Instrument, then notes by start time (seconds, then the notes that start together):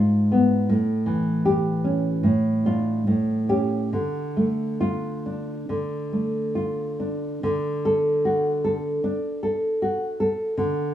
nylon-string guitar
Already playing: G#2 G#3 F4
0.32 B3
0.69 A2
1.06 E3
1.45 G4
1.84 C#4
2.23 A2
2.65 D4 F4
3.07 A2
3.49 C#4 G4
3.93 D3
4.37 A3
4.81 F4
5.26 D4
5.69 D3
6.12 A3
6.55 F4
7.00 D4
7.43 D3
7.85 A4
8.25 F#4
8.64 A4
9.04 D4
9.43 A4
9.82 F#4
10.20 A4
10.57 D3